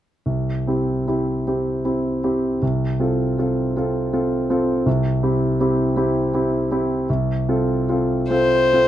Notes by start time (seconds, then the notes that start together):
0.26 C2
0.67 C4 E4 G4
1.08 C4 E4 G4
1.47 C4 E4 G4
1.85 C4 E4 G4
2.24 C4 E4 G4
2.62 C2
3.00 C4 F4 A4
3.38 C4 F4 A4
3.77 C4 F4 A4
4.13 C4 F4 A4
4.50 C4 F4 A4
4.86 C2
5.23 C4 E4 G4
5.60 C4 E4 G4
5.97 C4 E4 G4
6.34 C4 E4 G4
6.71 C4 E4 G4
7.09 C2
7.49 C4 F4 A4
7.89 C4 F4 A4
8.30 C4 F4 A4 C5
8.73 C4 F4 A4